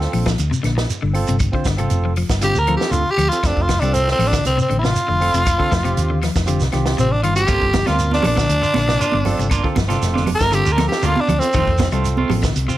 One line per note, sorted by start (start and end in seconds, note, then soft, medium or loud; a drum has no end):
0.00 0.21 C4 medium
0.00 0.29 C4 loud
0.00 0.30 F4 medium
0.00 0.30 A4 loud
0.00 snare soft
0.13 0.34 A#1 medium
0.13 0.22 F3 medium
0.13 open hi-hat medium
0.13 claves medium
0.13 shekere soft
0.26 0.43 F3 medium
0.26 kick medium
0.26 snare medium
0.26 closed hi-hat soft
0.26 shekere medium
0.38 0.50 D2 medium
0.38 closed hi-hat medium
0.38 shekere medium
0.51 0.59 C3 medium
0.51 shekere medium
0.63 0.85 A#1 medium
0.63 0.72 D3 medium
0.63 snare soft
0.63 closed hi-hat medium
0.63 claves medium
0.77 muted clean electric guitar stroke medium
0.77 snare medium
0.77 shekere soft
0.90 closed hi-hat medium
0.90 shekere medium
1.02 1.24 G1 medium
1.02 1.19 D3 medium
1.14 1.35 C4 loud
1.14 1.35 F4 medium
1.14 1.36 A4 loud
1.14 open hi-hat medium
1.14 claves medium
1.14 shekere soft
1.27 1.49 G1 medium
1.27 1.45 C3 medium
1.27 closed hi-hat medium
1.27 shekere medium
1.39 kick medium
1.39 closed hi-hat medium
1.39 claves medium
1.39 shekere medium
1.52 1.62 D3 medium
1.52 1.66 C4 medium
1.52 1.66 F4 medium
1.52 1.66 C5 medium
1.52 kick medium
1.65 1.86 G1 medium
1.65 1.75 D3 medium
1.65 kick medium
1.65 snare medium
1.65 closed hi-hat soft
1.65 shekere medium
1.77 1.96 C3 medium
1.77 2.12 C4 medium
1.77 2.12 F4 medium
1.77 2.12 A4 loud
1.77 closed hi-hat medium
1.77 claves medium
1.77 shekere soft
1.90 2.23 F1 medium
1.90 closed hi-hat medium
1.90 shekere medium
2.05 2.13 F3 medium
2.16 2.33 F3 medium
2.16 open hi-hat medium
2.16 claves medium
2.16 shekere soft
2.29 2.50 G1 medium
2.29 kick medium
2.29 snare medium
2.29 closed hi-hat soft
2.29 shekere medium
2.41 2.59 D3 medium
2.41 2.56 C4 medium
2.41 2.56 F4 medium
2.41 2.60 G4 loud
2.41 2.56 C5 medium
2.41 closed hi-hat medium
2.41 shekere medium
2.55 2.76 D2 medium
2.55 2.75 A#4 medium
2.55 shekere medium
2.67 2.84 F3 medium
2.67 3.02 C4 medium
2.67 3.02 F4 medium
2.67 3.02 A4 medium
2.67 closed hi-hat soft
2.67 claves medium
2.77 2.93 G4 medium
2.77 shekere soft
2.81 snare medium
2.91 3.03 D2 medium
2.91 3.09 D3 medium
2.91 3.13 F4 medium
2.91 closed hi-hat medium
2.91 shekere medium
3.11 3.31 G4 loud
3.18 3.29 D2 medium
3.18 3.34 F3 medium
3.18 closed hi-hat soft
3.18 claves medium
3.18 shekere soft
3.29 3.38 C4 medium
3.29 3.48 F4 medium
3.29 3.38 F4 medium
3.29 closed hi-hat medium
3.29 shekere medium
3.33 3.39 A4 medium
3.43 3.54 F1 loud
3.43 3.65 C4 medium
3.43 3.63 D4 medium
3.43 3.65 F4 medium
3.43 3.65 A4 medium
3.43 muted clean electric guitar stroke medium
3.43 kick loud
3.43 snare soft
3.43 closed hi-hat medium
3.43 claves medium
3.43 shekere medium
3.56 3.77 F1 medium
3.56 kick medium
3.62 3.81 F4 medium
3.68 3.77 F3 medium
3.68 kick medium
3.68 snare medium
3.68 closed hi-hat soft
3.68 shekere medium
3.80 4.12 C2 medium
3.80 3.98 G3 medium
3.80 4.37 C4 medium
3.80 3.95 D4 medium
3.80 closed hi-hat soft
3.80 claves medium
3.80 shekere soft
3.85 4.37 F4 medium
3.85 4.38 A4 medium
3.94 4.10 C4 medium
3.94 closed hi-hat medium
3.94 shekere medium
4.08 4.29 C4 loud
4.08 snare soft
4.19 4.40 A1 medium
4.19 4.28 F3 medium
4.19 open hi-hat medium
4.19 claves medium
4.19 shekere soft
4.27 4.44 D4 medium
4.33 4.49 D3 medium
4.33 kick medium
4.33 snare medium
4.33 closed hi-hat medium
4.33 shekere medium
4.45 4.56 C2 loud
4.45 4.61 C4 medium
4.45 snare soft
4.45 closed hi-hat medium
4.45 shekere medium
4.57 4.65 C3 medium
4.57 shekere medium
4.62 4.78 C4 medium
4.69 4.91 A1 medium
4.69 4.78 D3 medium
4.69 closed hi-hat soft
4.69 claves medium
4.79 6.27 F4 medium
4.83 4.99 C3 medium
4.83 snare medium
4.83 shekere soft
4.96 closed hi-hat medium
4.96 shekere medium
5.08 5.30 F1 medium
5.08 5.25 D3 medium
5.20 5.41 C4 medium
5.20 5.42 F4 medium
5.20 5.42 A4 medium
5.20 open hi-hat medium
5.20 claves medium
5.20 shekere soft
5.34 5.55 F1 medium
5.34 5.51 C3 medium
5.34 closed hi-hat medium
5.34 shekere medium
5.46 kick loud
5.46 closed hi-hat medium
5.46 claves medium
5.46 shekere medium
5.58 5.67 D3 medium
5.58 5.72 C4 medium
5.58 5.72 F4 medium
5.58 5.72 A4 loud
5.58 kick medium
5.71 5.92 F1 medium
5.71 5.80 F3 medium
5.71 kick medium
5.71 snare medium
5.71 closed hi-hat medium
5.71 shekere medium
5.84 6.01 C3 medium
5.84 6.18 C4 medium
5.84 6.18 F4 medium
5.84 6.18 G4 loud
5.84 closed hi-hat medium
5.84 claves medium
5.84 shekere soft
5.97 6.29 D#2 medium
5.97 closed hi-hat medium
5.97 shekere medium
6.10 6.18 D3 medium
6.22 6.39 F3 medium
6.22 snare soft
6.22 open hi-hat medium
6.22 claves medium
6.22 shekere soft
6.35 6.56 F1 medium
6.35 kick medium
6.35 snare medium
6.35 closed hi-hat medium
6.35 shekere medium
6.46 6.64 D3 medium
6.46 6.61 C4 medium
6.46 6.61 F4 medium
6.46 6.61 G4 medium
6.46 closed hi-hat medium
6.46 shekere medium
6.60 6.71 C2 medium
6.60 snare soft
6.60 shekere medium
6.72 6.96 C2 medium
6.72 6.89 D#3 medium
6.72 7.07 C4 medium
6.72 7.07 F4 medium
6.72 7.07 G4 loud
6.72 snare soft
6.72 closed hi-hat soft
6.72 claves medium
6.86 snare medium
6.86 shekere soft
6.98 7.22 A1 medium
6.98 7.15 C3 medium
6.98 7.13 C4 medium
6.98 closed hi-hat medium
6.98 shekere medium
7.12 7.23 D4 medium
7.23 7.47 G1 medium
7.23 7.40 D#3 medium
7.23 7.35 F4 medium
7.23 closed hi-hat medium
7.23 claves medium
7.23 shekere soft
7.35 7.43 C4 medium
7.35 7.43 F4 medium
7.35 7.89 G4 loud
7.35 7.43 G4 medium
7.35 closed hi-hat medium
7.35 shekere medium
7.47 7.59 G1 loud
7.47 7.64 A#3 medium
7.47 7.69 C4 medium
7.47 7.64 D4 medium
7.47 7.69 F4 medium
7.47 7.64 F4 medium
7.47 7.70 A4 medium
7.47 muted clean electric guitar stroke medium
7.47 kick medium
7.47 closed hi-hat medium
7.47 claves medium
7.47 shekere medium
7.61 7.82 G1 loud
7.61 kick medium
7.74 7.83 F3 medium
7.74 kick medium
7.74 snare medium
7.74 closed hi-hat soft
7.74 high conga medium
7.74 low conga medium
7.74 shekere medium
7.86 8.19 D2 medium
7.86 8.03 G3 medium
7.86 8.41 C4 medium
7.86 8.02 D4 soft
7.86 8.41 F4 medium
7.86 8.02 F4 medium
7.86 8.12 F4 medium
7.86 8.41 A#4 medium
7.86 snare soft
7.86 closed hi-hat soft
7.86 high conga medium
7.86 claves medium
7.86 shekere soft
7.99 closed hi-hat medium
7.99 shekere medium
8.11 8.28 D4 soft
8.11 8.25 D4 loud
8.11 8.27 F4 medium
8.11 snare soft
8.11 high conga medium
8.23 8.46 A#1 medium
8.23 8.32 F3 medium
8.23 open hi-hat medium
8.23 low conga medium
8.23 claves medium
8.23 shekere soft
8.27 9.74 D4 loud
8.37 8.53 D3 medium
8.37 kick medium
8.37 snare medium
8.37 closed hi-hat medium
8.37 shekere medium
8.49 8.60 D2 medium
8.49 closed hi-hat medium
8.49 shekere medium
8.62 8.70 D3 medium
8.62 8.78 D4 soft
8.62 8.78 F4 medium
8.62 muted fingered electric bass stroke soft
8.62 shekere medium
8.74 8.96 A#1 loud
8.74 8.83 D3 medium
8.74 snare soft
8.74 closed hi-hat medium
8.74 high conga loud
8.74 claves medium
8.88 9.04 C3 medium
8.88 snare medium
8.88 shekere soft
9.00 9.16 A#3 medium
9.00 9.16 D4 medium
9.00 9.17 F4 medium
9.00 closed hi-hat medium
9.00 shekere medium
9.12 9.35 G1 loud
9.12 9.30 D3 medium
9.12 high conga medium
9.25 9.46 C4 loud
9.25 9.46 F4 medium
9.25 9.47 A4 loud
9.25 open hi-hat medium
9.25 high conga medium
9.25 low conga medium
9.25 claves medium
9.25 shekere soft
9.39 9.60 G1 medium
9.39 9.55 C3 medium
9.39 closed hi-hat medium
9.39 shekere medium
9.50 9.67 A#3 medium
9.50 9.67 D4 medium
9.50 9.67 F4 medium
9.50 kick medium
9.50 closed hi-hat medium
9.50 claves medium
9.50 shekere medium
9.64 9.72 D3 medium
9.64 9.77 C4 medium
9.64 9.77 F4 medium
9.64 9.78 A4 loud
9.64 kick medium
9.76 9.97 G1 medium
9.76 9.85 F3 medium
9.76 kick medium
9.76 snare medium
9.76 closed hi-hat medium
9.76 high conga medium
9.76 shekere medium
9.88 10.06 C3 medium
9.88 10.22 C4 medium
9.88 10.04 D4 soft
9.88 10.04 F4 medium
9.88 10.23 F4 medium
9.88 10.23 A4 loud
9.88 snare soft
9.88 closed hi-hat medium
9.88 claves medium
9.88 shekere soft
10.02 10.34 F1 medium
10.02 snare soft
10.02 closed hi-hat medium
10.02 shekere medium
10.14 10.23 D3 medium
10.14 10.30 D4 soft
10.14 10.29 F4 medium
10.14 snare soft
10.14 high conga medium
10.26 open hi-hat medium
10.26 low conga medium
10.26 claves medium
10.26 shekere soft
10.35 10.56 A#4 loud
10.40 10.61 G1 medium
10.40 kick medium
10.40 snare medium
10.40 closed hi-hat medium
10.40 shekere medium
10.51 10.68 D3 medium
10.51 10.66 C4 medium
10.51 10.66 F4 medium
10.51 10.73 G4 loud
10.51 10.67 A4 medium
10.51 closed hi-hat medium
10.51 shekere medium
10.65 10.87 D2 medium
10.65 10.81 D4 soft
10.65 10.80 F4 medium
10.65 shekere medium
10.72 10.87 A#4 medium
10.77 10.94 F3 medium
10.77 11.12 C4 medium
10.77 11.12 F4 medium
10.77 11.12 A4 medium
10.77 snare soft
10.77 closed hi-hat medium
10.77 high conga loud
10.77 claves medium
10.88 11.08 G4 medium
10.88 shekere soft
10.92 snare medium
11.02 11.14 D2 medium
11.02 11.19 D3 medium
11.02 11.19 A#3 medium
11.02 11.19 D4 medium
11.02 11.19 F4 medium
11.02 11.22 F4 medium
11.02 closed hi-hat medium
11.02 shekere medium
11.16 muted fingered electric bass stroke soft
11.16 high conga medium
11.20 11.41 D4 medium
11.28 11.39 D2 medium
11.28 11.45 F3 medium
11.28 closed hi-hat medium
11.28 low conga medium
11.28 claves medium
11.28 shekere soft
11.39 11.87 C4 loud
11.39 11.47 C4 medium
11.39 11.48 F4 medium
11.39 11.48 A4 medium
11.39 closed hi-hat medium
11.39 shekere medium
11.53 11.65 F1 loud
11.53 11.69 D#3 medium
11.53 11.71 D#3 medium
11.53 11.70 A3 medium
11.53 11.74 C4 medium
11.53 11.70 C4 medium
11.53 11.75 F4 medium
11.53 11.70 F4 medium
11.53 11.75 A4 medium
11.53 kick medium
11.53 closed hi-hat medium
11.53 claves medium
11.53 shekere medium
11.67 11.88 F1 medium
11.67 kick medium
11.78 11.88 F3 medium
11.78 kick medium
11.78 snare medium
11.78 closed hi-hat soft
11.78 high conga medium
11.78 low conga medium
11.78 shekere medium
11.92 12.23 C2 medium
11.92 12.08 G3 medium
11.92 12.08 A3 soft
11.92 12.47 C4 medium
11.92 12.08 C4 soft
11.92 12.07 F4 medium
11.92 12.47 F4 medium
11.92 12.47 A4 medium
11.92 closed hi-hat soft
11.92 claves medium
11.92 shekere soft
12.05 closed hi-hat medium
12.05 shekere medium
12.17 12.33 A3 soft
12.17 12.33 C4 medium
12.17 12.33 F4 medium
12.17 high conga medium
12.30 12.51 A1 medium
12.30 12.38 F3 medium
12.30 open hi-hat medium
12.30 low conga medium
12.30 claves medium
12.30 shekere soft
12.43 12.59 D3 medium
12.43 kick medium
12.43 snare medium
12.43 closed hi-hat medium
12.43 shekere medium
12.56 12.66 C2 loud
12.56 closed hi-hat medium
12.56 shekere medium
12.68 12.76 C3 medium
12.68 12.78 C4 medium
12.68 12.78 F4 medium
12.68 muted clean electric guitar stroke medium
12.68 shekere medium